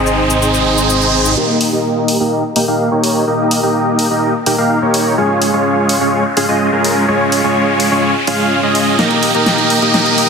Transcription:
Already playing: detuned saw bass G#1, supersaw synth C4 D#4 G#4 C5 D#5, riser
0.06 shaker
0.30 shaker
0.42 shaker
0.54 shaker
0.78 shaker
0.90 shaker
1.02 shaker
1.25 shaker
1.37 supersaw synth A#3 D#4 G4 A#4 D#5, riser
1.61 open hi-hat
1.73 supersaw synth A#3 D#4 G4 A#4 D#5
2.08 open hi-hat
2.20 supersaw synth A#3 D#4 G4 A#4 D#5
2.56 supersaw synth A#3 D#4 G4 A#4 G5, open hi-hat
2.68 supersaw synth A#3 D#4 G4 A#4 F5
2.92 supersaw synth A#3 D#4 G4 A#4 C#5
3.04 open hi-hat
3.27 supersaw synth A#3 D#4 G4 A#4 D#5
3.51 open hi-hat
3.63 supersaw synth A#3 D#4 G4 A#4 D#5
3.99 open hi-hat
4.11 supersaw synth A#3 D#4 G4 A#4 D#5
4.46 supersaw synth A#3 D#4 G4 A#4 G5, open hi-hat
4.58 supersaw synth A#3 D#4 G4 A#4 F5
4.82 supersaw synth A#3 D#4 G4 A#4 C#5
4.94 open hi-hat
5.18 supersaw synth G#3 C#4 F4 G#4 C#5
5.42 open hi-hat
5.54 supersaw synth G#3 C#4 F4 G#4 C#5
5.89 open hi-hat
6.01 supersaw synth G#3 C#4 F4 G#4 C#5
6.37 supersaw synth G#3 C#4 F4 G#4 F5, open hi-hat
6.49 supersaw synth G#3 C#4 F4 G#4 D#5
6.73 supersaw synth G#3 C#4 F4 G#4 A#4
6.85 open hi-hat
7.08 supersaw synth G#3 C#4 F4 G#4 C#5
7.32 open hi-hat
7.44 supersaw synth G#3 C#4 F4 G#4 C#5
7.80 open hi-hat
7.92 supersaw synth G#3 C#4 F4 G#4 C#5
8.27 supersaw synth G#3 C#4 F4 G#4 F5, open hi-hat
8.63 supersaw synth G#3 C#4 F4 G#4 D#5
8.75 open hi-hat
8.99 supersaw synth A#3 D#4 G4 A#4 D#5, snare, closed hi-hat
9.11 closed hi-hat
9.23 open hi-hat
9.35 supersaw synth A#3 D#4 G4 A#4 D#5, closed hi-hat
9.46 snare, closed hi-hat
9.58 closed hi-hat
9.70 open hi-hat
9.82 supersaw synth A#3 D#4 G4 A#4 D#5, closed hi-hat
9.94 supersaw synth A#3 D#4 G4 A#4 D#5, snare, closed hi-hat
10.06 closed hi-hat
10.18 open hi-hat

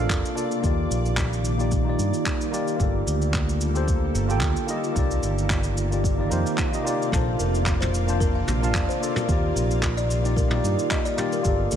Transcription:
Already playing: ambient pad C3 A#3 F4 A4 D5, tine electric piano A#3 D4 F4
0.00 tine electric piano A4 F5
0.10 fingered electric bass F1, kick, clap, cabasa
0.25 cabasa
0.35 tine electric piano A#3 D4 F4 A4 D5, cabasa
0.51 cabasa
0.60 fingered electric bass D#2, ambient pad D#3 G3, tine electric piano A#3 D#4 F4, kick, cabasa
0.65 tine electric piano G4 D5
0.90 fingered electric bass A#1, cabasa
1.06 cabasa
1.17 kick, clap, cabasa
1.33 cabasa
1.45 cabasa
1.58 tine electric piano A#3 D#4 F4 G4 D5, cabasa
1.71 kick, cabasa
1.83 tine electric piano A#3 D#4 F4
1.88 tine electric piano G4 D5
1.99 fingered electric bass G2, cabasa
2.14 cabasa
2.26 kick, clap, cabasa
2.41 cabasa
2.51 tine electric piano A#3 D#4 F4 G4 D5, cabasa
2.68 cabasa
2.76 fingered electric bass G1, tine electric piano A#3 F4 G4, ambient pad F4, kick, cabasa
2.80 ambient pad D3 A4, tine electric piano A4 D5
3.07 fingered electric bass D2, cabasa
3.22 cabasa
3.34 kick, clap, cabasa
3.49 cabasa
3.61 cabasa
3.74 tine electric piano A#3 F4 G4 A4 C5, cabasa
3.88 kick, cabasa
4.15 fingered electric bass G1, cabasa
4.28 tine electric piano A#3 F4 G4 A4 G5, cabasa
4.41 fingered electric bass D2, kick, clap, cabasa
4.57 cabasa
4.67 ambient pad C3 D#3 D5, tine electric piano A#3 D#4 F4 G4 D#5, cabasa
4.84 cabasa
4.92 fingered electric bass C2, tine electric piano A#3 D#4 F4, kick
4.96 tine electric piano G4 D5, cabasa
5.11 cabasa
5.23 fingered electric bass G1, cabasa
5.38 cabasa
5.50 kick, clap, cabasa
5.63 cabasa
5.77 cabasa
5.90 tine electric piano A#3 D#4 F4 G4 D5, cabasa
6.04 kick, cabasa
6.17 tine electric piano A#3 D#4 F4 G4 D5
6.30 fingered electric bass F2, tine electric piano A#3 D#4 F4 G4 C5, cabasa
6.46 cabasa
6.58 kick, clap, cabasa
6.71 tine electric piano A#3 D#4 F4 G4 D#5, cabasa
6.83 tine electric piano A#3 D#4 F4 G4 D5, cabasa
7.02 cabasa
7.09 fingered electric bass A#1, tine electric piano A#3 D4 F4, ambient pad A#3, kalimba A4, kick, mid tom
7.14 tine electric piano C5 A5, cabasa
7.39 fingered electric bass F1, kalimba A#4, cabasa
7.55 cabasa
7.66 kick, clap, cabasa
7.81 kalimba C5, mid tom, cabasa
7.94 cabasa
8.06 tine electric piano A#3 D4 F4 C5 A5, cabasa
8.20 kalimba A#4, kick, cabasa
8.35 kalimba F5
8.48 fingered electric bass A#1, mid tom, cabasa
8.61 tine electric piano A#3 D4 F4 F5 A5, cabasa
8.74 fingered electric bass F1, kalimba D5, kick, clap, cabasa
8.89 kalimba C5, cabasa
9.00 tine electric piano A#3 D4 F4 A4 D5, cabasa
9.16 kalimba A#4, mid tom, cabasa
9.25 fingered electric bass D#2, ambient pad D#3 G3, tine electric piano A#3 D#4 F4, kalimba G4, kick, cabasa
9.30 tine electric piano G4 D5
9.55 fingered electric bass A#1, kalimba A#4, cabasa
9.71 cabasa
9.83 kick, clap, mid tom, cabasa
9.97 kalimba D5, cabasa
10.11 cabasa
10.23 tine electric piano A#3 D#4 F4 G4 D5, cabasa
10.36 kalimba A#4, kick, cabasa
10.48 tine electric piano A#3 D#4 F4, kalimba F5, mid tom
10.53 tine electric piano G4 D5
10.64 fingered electric bass G2, cabasa
10.79 cabasa
10.90 kalimba D#5, kick, clap, cabasa
11.05 kalimba D5, cabasa
11.16 tine electric piano A#3 D#4 F4 G4 D5, mid tom, cabasa
11.32 kalimba A#4, cabasa
11.41 fingered electric bass G1, ambient pad D3 G3 A#3, tine electric piano A#3 F4 G4, kalimba G4, kick, cabasa
11.46 tine electric piano A4 D5
11.71 fingered electric bass D2, kalimba A4, cabasa

